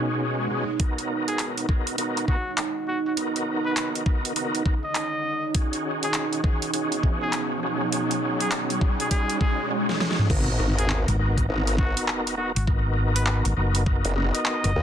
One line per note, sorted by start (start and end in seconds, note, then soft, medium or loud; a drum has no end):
0.00 0.48 B2 medium
0.00 0.80 B2 medium
0.00 0.48 C#4 medium
0.00 0.48 D#4 medium
0.00 0.78 D#4 medium
0.00 0.48 F#4 medium
0.00 0.47 G#4 medium
0.00 9.71 G#4 medium
0.00 9.71 C#5 medium
0.00 9.70 F#5 medium
0.00 swell medium
0.50 0.64 B2 medium
0.50 0.64 C#4 medium
0.50 0.64 D#4 medium
0.50 0.64 F#4 medium
0.50 0.65 G#4 medium
0.79 1.66 B3 medium
0.79 9.71 D#4 medium
0.79 1.66 D#4 medium
0.79 1.66 F#4 medium
0.79 1.66 A#4 medium
0.79 kick loud
0.79 closed hi-hat medium
0.79 riser medium
0.98 closed hi-hat soft
1.28 1.49 G#4 loud
1.28 closed hi-hat medium
1.39 clap loud
1.39 closed hi-hat medium
1.58 closed hi-hat soft
1.69 1.96 B3 medium
1.69 1.96 D#4 medium
1.69 1.96 F#4 medium
1.69 1.96 A#4 medium
1.69 kick loud
1.69 cross-stick soft
1.87 closed hi-hat medium
1.98 2.25 B3 medium
1.98 2.25 D#4 medium
1.98 2.25 F#4 medium
1.98 2.26 A#4 loud
1.98 closed hi-hat medium
2.17 closed hi-hat soft
2.28 2.37 B3 medium
2.28 2.37 D#4 medium
2.28 2.37 F#4 medium
2.28 2.52 F#4 medium
2.28 2.37 A#4 loud
2.28 kick medium
2.58 clap loud
2.58 closed hi-hat medium
2.88 3.00 F#4 medium
3.06 3.13 F#4 medium
3.17 4.04 B3 medium
3.17 4.04 D#4 medium
3.17 4.04 F#4 medium
3.17 4.04 A#4 medium
3.17 closed hi-hat medium
3.36 closed hi-hat soft
3.65 3.73 B4 medium
3.77 3.89 B4 medium
3.77 clap loud
3.77 closed hi-hat medium
3.95 closed hi-hat soft
4.06 4.33 B3 medium
4.06 4.33 D#4 medium
4.06 4.33 F#4 medium
4.06 4.33 A#4 medium
4.06 kick loud
4.25 closed hi-hat medium
4.36 4.63 B3 medium
4.36 4.63 D#4 medium
4.36 4.63 F#4 medium
4.36 4.63 A#4 loud
4.36 closed hi-hat medium
4.55 closed hi-hat soft
4.66 4.75 B3 medium
4.66 4.75 D#4 medium
4.66 4.75 F#4 medium
4.66 4.75 A#4 loud
4.66 kick loud
4.84 5.55 D#5 loud
4.95 clap loud
4.95 closed hi-hat medium
5.54 9.71 B2 medium
5.54 6.41 C#4 medium
5.54 6.41 D#4 medium
5.54 6.41 F#4 medium
5.54 6.41 G#4 medium
5.54 kick loud
5.54 closed hi-hat medium
5.73 closed hi-hat soft
6.03 6.24 G#4 medium
6.03 closed hi-hat medium
6.14 clap loud
6.14 closed hi-hat medium
6.33 closed hi-hat soft
6.44 6.71 C#4 medium
6.44 6.71 D#4 medium
6.44 6.71 F#4 medium
6.44 6.71 G#4 medium
6.44 kick loud
6.44 cross-stick soft
6.62 closed hi-hat medium
6.74 7.60 C#4 medium
6.74 7.60 D#4 medium
6.74 7.60 F#4 medium
6.74 7.60 G#4 medium
6.74 closed hi-hat medium
6.92 closed hi-hat soft
7.03 kick medium
7.22 7.43 G#4 medium
7.33 clap loud
7.33 closed hi-hat medium
7.63 7.90 C#4 medium
7.63 7.90 D#4 medium
7.63 7.90 F#4 medium
7.63 7.90 G#4 medium
7.92 8.50 C#4 medium
7.92 8.50 D#4 medium
7.92 8.50 F#4 medium
7.92 8.50 G#4 medium
7.92 closed hi-hat medium
8.11 closed hi-hat soft
8.40 8.50 G#4 medium
8.40 closed hi-hat medium
8.52 9.10 C#4 medium
8.52 9.10 D#4 medium
8.52 9.10 F#4 medium
8.52 9.10 G#4 medium
8.52 clap loud
8.52 closed hi-hat medium
8.70 closed hi-hat soft
8.81 kick loud
9.00 9.10 G#4 medium
9.00 closed hi-hat medium
9.11 9.39 C#4 medium
9.11 9.39 D#4 medium
9.11 9.39 F#4 medium
9.11 9.35 G#4 loud
9.11 9.39 G#4 medium
9.11 kick medium
9.11 closed hi-hat medium
9.30 closed hi-hat soft
9.40 9.69 C#4 medium
9.40 9.69 D#4 medium
9.40 9.69 F#4 medium
9.40 9.65 G#4 medium
9.40 9.69 G#4 medium
9.40 kick loud
9.71 9.99 C#4 medium
9.71 9.99 D#4 medium
9.71 9.99 F#4 medium
9.71 9.99 G#4 medium
9.89 snare medium
10.00 10.28 C#4 medium
10.00 10.28 D#4 medium
10.00 10.28 F#4 medium
10.00 10.28 G#4 medium
10.00 snare medium
10.11 snare medium
10.19 snare soft
10.19 mid tom medium
10.30 10.58 G#1 loud
10.30 11.17 B3 medium
10.30 11.17 D#4 medium
10.30 11.17 F#4 medium
10.30 11.17 A#4 medium
10.30 kick loud
10.30 crash loud
10.30 sub drop medium
10.60 11.05 G#1 medium
10.60 cross-stick soft
10.78 10.99 G#4 loud
10.78 closed hi-hat medium
10.90 clap loud
11.08 11.47 G#1 medium
11.08 closed hi-hat soft
11.19 11.46 B3 medium
11.19 11.46 D#4 medium
11.19 11.46 F#4 medium
11.19 11.46 A#4 medium
11.38 kick medium
11.38 closed hi-hat medium
11.49 11.94 G#1 loud
11.49 11.76 B3 loud
11.49 11.76 D#4 medium
11.49 11.76 F#4 medium
11.49 11.76 A#4 loud
11.67 closed hi-hat medium
11.78 12.35 B3 medium
11.78 12.35 D#4 medium
11.78 12.03 F#4 medium
11.78 12.35 F#4 medium
11.78 12.35 A#4 loud
11.78 kick loud
11.97 closed hi-hat medium
12.08 clap loud
12.27 closed hi-hat medium
12.37 12.52 B3 medium
12.37 12.52 D#4 medium
12.37 12.49 F#4 medium
12.37 12.52 F#4 medium
12.37 12.52 A#4 medium
12.56 13.43 G#1 loud
12.56 12.63 F#4 medium
12.56 closed hi-hat medium
12.67 13.54 B3 medium
12.67 13.54 D#4 medium
12.67 13.54 F#4 medium
12.67 13.54 A#4 medium
12.67 kick loud
13.15 13.23 B4 medium
13.15 closed hi-hat medium
13.27 13.39 B4 medium
13.27 clap loud
13.45 13.55 G#1 medium
13.45 closed hi-hat soft
13.57 14.02 F#1 loud
13.57 13.84 B3 medium
13.57 13.84 D#4 medium
13.57 13.84 F#4 medium
13.57 13.84 A#4 medium
13.75 closed hi-hat medium
13.86 14.13 B3 loud
13.86 14.13 D#4 medium
13.86 14.14 F#4 medium
13.86 14.13 A#4 loud
13.86 kick loud
14.05 14.32 F#1 loud
14.05 closed hi-hat medium
14.16 14.73 B3 medium
14.16 14.73 D#4 medium
14.16 14.73 F#4 medium
14.16 14.73 A#4 loud
14.35 14.83 D#5 loud
14.35 closed hi-hat medium
14.46 clap loud
14.64 14.74 F#1 medium
14.64 cross-stick soft
14.64 closed hi-hat medium
14.75 14.83 D#2 medium
14.75 14.83 B3 medium
14.75 14.83 D#4 medium
14.75 14.83 F#4 medium
14.75 14.83 A#4 medium